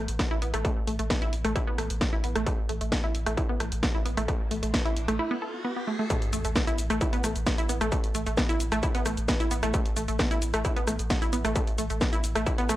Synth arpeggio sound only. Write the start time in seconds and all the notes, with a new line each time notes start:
0.19 B3
0.31 E4
0.42 B3
0.54 A3
0.65 A3
0.87 A3
0.99 A3
1.10 B3
1.22 E4
1.45 A3
1.56 E4
1.67 B3
1.78 A3
2.01 B3
2.13 E4
2.24 B3
2.36 A3
2.46 A3
2.69 A3
2.81 A3
2.92 B3
3.04 E4
3.26 A3
3.37 E4
3.49 B3
3.60 A3
3.83 B3
3.95 E4
4.06 B3
4.17 A3
4.28 A3
4.51 A3
4.63 A3
4.74 B3
4.85 E4
5.08 A3
5.19 E4
5.31 B3
5.42 A4
5.65 B3
5.76 B3
5.87 A3
5.99 A3
6.10 A3
6.33 A3
6.45 A3
6.56 B3
6.67 E4
6.90 A3
7.01 E4
7.13 B3
7.24 A3
7.47 B3
7.58 E4
7.69 B3
7.81 A3
7.92 A3
8.15 A3
8.26 A3
8.37 B3
8.49 E4
8.72 A3
8.83 E4
8.95 B3
9.06 A3
9.28 B3
9.40 E4
9.51 B3
9.63 A3
9.74 A3
9.96 A3
10.08 A3
10.19 B3
10.31 E4
10.54 A3
10.65 E4
10.76 B3
10.87 A3
11.10 B3
11.22 E4
11.33 B3
11.45 A3
11.56 A3
11.78 A3
11.90 A3
12.01 B3
12.13 E4
12.35 A3
12.46 E4
12.58 B3
12.69 A3